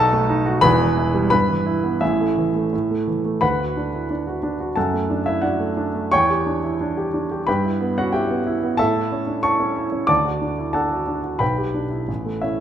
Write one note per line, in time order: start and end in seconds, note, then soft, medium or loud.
0.00 0.59 B1 medium
0.00 0.66 F#3 medium
0.00 0.29 D#4 medium
0.00 0.46 F#4 medium
0.00 0.59 A4 medium
0.00 0.62 B4 medium
0.00 0.62 A5 loud
0.00 0.61 B5 loud
0.13 0.39 A3 medium
0.29 0.56 D#4 medium
0.46 0.63 F#4 medium
0.61 1.28 E1 medium
0.61 1.29 E2 medium
0.61 1.27 B4 medium
0.61 1.29 B5 loud
0.79 1.07 E3 medium
0.97 1.24 E4 medium
1.14 1.31 G3 medium
1.30 1.99 G2 medium
1.30 1.97 B4 medium
1.30 2.01 B5 loud
1.49 1.76 E3 medium
1.66 1.94 E4 medium
1.84 2.01 B3 medium
2.01 2.70 A1 medium
2.01 2.71 A2 medium
2.01 3.04 E4 medium
2.01 3.07 E5 medium
2.21 2.48 A3 medium
2.37 2.65 E3 medium
2.55 2.73 A3 soft
2.73 3.40 A2 medium
2.91 3.18 A3 soft
3.07 3.35 E3 medium
3.25 3.42 A3 soft
3.41 4.72 D2 medium
3.41 4.72 B4 medium
3.41 4.72 F#5 medium
3.41 4.75 B5 medium
3.60 3.87 F#4 soft
3.77 4.03 D4 soft
3.94 4.10 E4 soft
4.10 4.37 D4 medium
4.27 4.53 F#4 medium
4.43 4.69 D4 medium
4.60 4.76 F#4 medium
4.76 6.09 F#2 medium
4.76 5.23 A4 medium
4.76 5.23 F#5 medium
4.76 5.25 A5 medium
4.93 5.19 A3 soft
5.10 5.36 D4 medium
5.26 5.42 E4 medium
5.26 5.42 E5 medium
5.42 5.70 D4 soft
5.42 6.09 F#4 medium
5.42 6.09 D5 medium
5.42 6.12 F#5 medium
5.60 5.88 A3 medium
5.77 6.05 D4 medium
5.94 6.12 A3 medium
6.12 7.43 E2 medium
6.12 7.43 C#5 medium
6.12 7.43 G5 medium
6.12 7.46 C#6 loud
6.30 6.57 G4 medium
6.47 6.73 D4 medium
6.64 6.80 E4 soft
6.81 7.07 D4 medium
6.97 7.24 G4 medium
7.14 7.40 D4 medium
7.31 7.47 G4 medium
7.47 8.76 G2 medium
7.47 7.93 B4 medium
7.47 7.93 G5 medium
7.47 7.96 B5 medium
7.64 7.90 E4 soft
7.81 8.06 B3 medium
7.98 8.13 C#4 soft
7.98 8.13 F#4 medium
7.98 8.13 F#5 medium
8.12 8.40 E4 medium
8.12 8.75 G4 medium
8.12 8.76 E5 medium
8.12 8.79 G5 medium
8.30 8.56 B3 medium
8.47 8.73 E4 medium
8.63 8.79 B3 medium
8.77 10.06 A2 medium
8.77 9.40 A4 medium
8.77 9.40 E5 medium
8.77 9.42 A5 loud
8.95 9.21 E4 medium
9.12 9.38 C#4 medium
9.27 9.44 D4 soft
9.43 9.70 E4 soft
9.43 10.05 C#5 medium
9.43 10.05 A5 medium
9.43 10.09 C#6 medium
9.60 9.86 C#4 medium
9.76 10.03 E4 medium
9.92 10.09 C#4 medium
10.07 11.36 D2 medium
10.07 10.71 D5 medium
10.07 10.71 A5 medium
10.07 10.74 D6 loud
10.25 10.52 F#4 medium
10.41 10.68 D4 soft
10.58 10.75 E4 soft
10.73 11.01 D4 soft
10.73 11.36 A4 medium
10.73 11.36 F#5 medium
10.73 11.40 A5 medium
10.92 11.18 F#4 medium
11.07 11.34 D4 medium
11.23 11.40 F#4 soft
11.39 12.06 B1 medium
11.39 12.39 B4 medium
11.39 12.39 G5 medium
11.39 12.42 B5 medium
11.58 11.85 G4 soft
11.74 12.01 D4 soft
11.90 12.08 E4 soft
12.08 12.60 A1 soft
12.25 12.54 A3 soft
12.41 12.60 C#4 soft
12.41 12.60 E4 medium
12.41 12.60 E5 medium